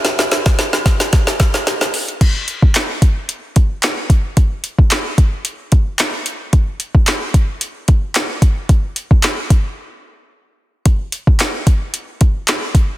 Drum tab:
CC |----------------|x---------------|----------------|----------------|
HH |xxxxxxxxxxxxxxox|x-x-x-x-x-x-x-x-|x-x-x-x-x-x-x-x-|x-x-x-x-x-x-x-x-|
CP |----------------|----x-------x---|----x-------x---|----x-------x---|
SD |oooooooooooooo--|----o-------o---|----o-------o---|----o-------o---|
BD |---o--o-o-o-----|o--o--o---o---o-|o--o--o---o-----|o--o--o---o---o-|

CC |----------------|----------------|
HH |x-x-x-x---------|x-x-x-x-x-x-x-x-|
CP |----x-----------|----x-------x---|
SD |----o-----------|----o-------o---|
BD |o--o--o---------|o--o--o---o---o-|